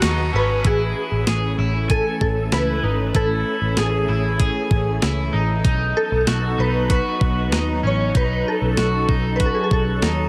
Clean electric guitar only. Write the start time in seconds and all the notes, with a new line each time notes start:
0.02 D#4
0.33 C#4
0.64 E4
1.27 G#4
1.59 E4
1.90 G#5
2.52 E4
2.84 D#4
3.15 E4
3.77 G#4
4.08 E4
4.40 G#4
5.02 E4
5.33 D#4
5.64 D#4
6.27 F#4
6.58 D#4
6.90 F#4
7.52 D#4
7.83 C#4
8.14 D#4
8.77 F#4
9.08 D#4
9.39 F#4
10.02 D#4